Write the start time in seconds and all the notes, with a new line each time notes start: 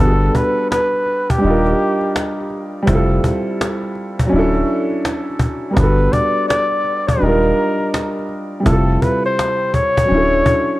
Already playing: G3 B3
0.00 G1 D4 F#4 A4
0.06 G#4
0.12 A4
0.21 cajon slap
0.35 B4, cajon bass
0.71 B4, cajon slap
0.93 cajon slap
1.06 cajon slap
1.30 G4, cajon bass
1.38 G3 D4
1.43 D#1 D#4, cajon slap
1.47 F4 A#4
1.65 cajon slap
1.79 cajon slap
2.01 cajon slap
2.16 cajon slap
2.41 cajon slap
2.50 cajon slap
2.83 G3 C4
2.87 F1 E4, cajon bass
2.92 F4 A4
3.10 cajon slap
3.24 cajon bass
3.61 cajon slap
3.83 cajon slap
3.95 cajon slap
4.19 cajon bass
4.27 F#3 C#4
4.32 D1 D4 E4
4.39 A4
4.55 cajon slap
4.68 cajon slap
4.90 cajon slap
5.05 cajon slap
5.30 cajon slap
5.40 cajon bass
5.71 G3 B3 A#4
5.77 G1 D4 F#4 B4, cajon bass
5.83 A4
5.99 cajon slap
6.13 D5, cajon bass
6.49 D5, cajon slap
6.72 cajon slap
6.84 cajon slap
7.08 A#4, cajon bass
7.16 F#3 D4
7.21 D#1 G3 D#4, cajon slap
7.26 F4 A#4
7.43 cajon slap
7.57 cajon slap
7.79 cajon slap
7.94 cajon slap
8.19 cajon slap
8.29 cajon slap
8.60 C3 G3
8.66 F1 E4 F4 A4, cajon bass
8.72 A4
8.88 cajon slap
9.02 B4, cajon bass
9.24 C5, cajon slap
9.39 cajon slap
9.61 cajon slap
9.74 C#5, cajon bass
9.97 cajon bass
10.05 F#3 C#4
10.10 D1 D4, cajon slap
10.14 E4 A4
10.33 cajon slap
10.46 cajon bass